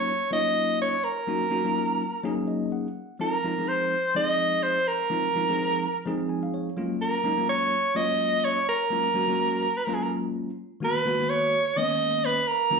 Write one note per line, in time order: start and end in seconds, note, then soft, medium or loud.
0.00 0.11 F#3 medium
0.00 0.11 A#3 medium
0.00 0.11 C#4 soft
0.00 0.11 D#4 soft
0.00 0.12 F4 medium
0.00 0.30 C#5 medium
0.31 0.94 F#3 medium
0.31 0.95 A#3 medium
0.31 0.95 C#4 medium
0.31 0.95 D#4 medium
0.31 0.95 F4 medium
0.31 0.78 D#5 medium
0.82 1.06 C#5 medium
1.04 2.48 A#4 medium
1.27 1.44 F#3 medium
1.27 1.44 A#3 medium
1.27 1.45 C#4 medium
1.27 1.45 D#4 medium
1.27 1.45 F#4 medium
1.50 1.60 F#3 medium
1.50 1.60 A#3 medium
1.50 1.61 C#4 medium
1.50 1.61 D#4 medium
1.50 1.61 F#4 medium
1.64 2.02 F#3 medium
1.64 2.03 A#3 medium
1.64 2.03 C#4 medium
1.64 2.03 D#4 medium
1.64 2.03 F4 medium
2.24 2.86 F#3 loud
2.24 2.86 A#3 medium
2.24 2.87 C#4 medium
2.24 2.87 D#4 medium
2.24 2.87 G#4 loud
2.48 2.70 D#5 medium
2.72 3.17 F#5 medium
3.19 3.36 F3 medium
3.19 3.36 G#3 medium
3.19 3.36 C4 medium
3.19 3.36 D#4 medium
3.19 3.37 F4 medium
3.19 3.70 A#4 medium
3.44 3.53 F3 medium
3.44 3.52 G#3 medium
3.44 3.52 C4 medium
3.44 3.53 D#4 medium
3.44 3.53 F4 medium
3.57 3.94 F3 soft
3.57 3.95 G#3 medium
3.57 3.95 C4 medium
3.57 3.95 D#4 medium
3.57 3.95 G#4 medium
3.68 4.16 C5 medium
4.15 4.77 F3 medium
4.15 4.77 G#3 medium
4.15 4.78 C4 medium
4.15 4.78 D#4 medium
4.15 4.78 G#4 medium
4.15 4.65 D#5 medium
4.63 4.89 C5 medium
4.88 6.30 A#4 medium
5.10 5.27 F3 medium
5.10 5.27 G#3 medium
5.10 5.27 C4 medium
5.10 5.27 D#4 medium
5.10 5.28 F4 medium
5.35 5.43 F3 medium
5.35 5.43 G#3 medium
5.35 5.44 C4 medium
5.35 5.44 D#4 medium
5.35 5.44 F4 medium
5.48 5.85 F3 medium
5.48 5.85 G#3 medium
5.48 5.85 C4 medium
5.48 5.86 D#4 medium
5.48 5.86 G#4 medium
6.06 6.68 F3 medium
6.06 6.68 G#3 medium
6.06 6.68 C4 medium
6.06 6.69 D#4 medium
6.06 6.69 G#4 loud
6.29 6.42 G#5 medium
6.43 6.53 F5 medium
6.54 6.98 C#5 medium
6.77 7.16 F#3 medium
6.77 7.16 G#3 medium
6.77 7.17 A#3 medium
6.77 7.17 C#4 medium
6.77 7.17 F4 medium
7.01 7.46 A#4 medium
7.24 7.33 F#3 medium
7.24 7.33 G#3 medium
7.24 7.33 A#3 medium
7.24 7.33 C#4 medium
7.24 7.34 D#4 medium
7.36 7.74 F#3 medium
7.36 7.75 G#3 medium
7.36 7.75 A#3 medium
7.36 7.75 C#4 soft
7.36 7.75 F4 medium
7.49 7.98 C#5 medium
7.95 8.58 F#3 medium
7.95 8.58 G#3 medium
7.95 8.58 A#3 medium
7.95 8.58 C#4 medium
7.95 8.58 F4 medium
7.95 8.46 D#5 loud
8.45 8.68 C#5 medium
8.69 9.79 A#4 medium
8.90 9.07 F#3 medium
8.90 9.08 G#3 medium
8.90 9.08 A#3 medium
8.90 9.08 C#4 medium
8.90 9.08 F4 medium
9.14 9.23 F#3 medium
9.14 9.24 G#3 medium
9.14 9.24 A#3 medium
9.14 9.24 C#4 medium
9.14 9.24 F#4 medium
9.28 9.65 F#3 medium
9.28 9.65 G#3 medium
9.28 9.66 A#3 medium
9.28 9.66 C#4 medium
9.28 9.66 F#4 medium
9.77 9.87 B4 medium
9.85 10.49 F#3 medium
9.85 10.49 G#3 medium
9.85 10.49 A#3 medium
9.85 10.50 C#4 medium
9.85 9.96 A#4 medium
9.89 10.50 F4 medium
9.94 10.05 G#4 medium
10.03 10.11 A#4 medium
10.80 10.97 D#3 medium
10.80 10.98 G#3 medium
10.80 10.98 A#3 medium
10.80 10.98 B3 medium
10.80 10.98 F#4 medium
10.85 11.31 B4 medium
11.05 11.14 D#3 medium
11.05 11.14 G#3 medium
11.05 11.14 A#3 medium
11.05 11.14 B3 medium
11.05 11.15 F#4 medium
11.19 11.56 D#3 medium
11.19 11.56 G#3 medium
11.19 11.56 A#3 medium
11.19 11.56 B3 soft
11.19 11.56 F#4 medium
11.30 11.79 C#5 loud
11.77 12.39 D#3 medium
11.77 12.39 G#3 medium
11.77 12.39 A#3 medium
11.77 12.39 B3 medium
11.77 12.39 C#4 medium
11.77 12.27 D#5 loud
12.25 12.49 B4 loud
12.48 12.80 A#4 medium
12.71 12.80 D#3 medium
12.71 12.80 F#3 medium
12.71 12.80 A#3 medium
12.71 12.80 C#4 medium
12.71 12.80 F4 medium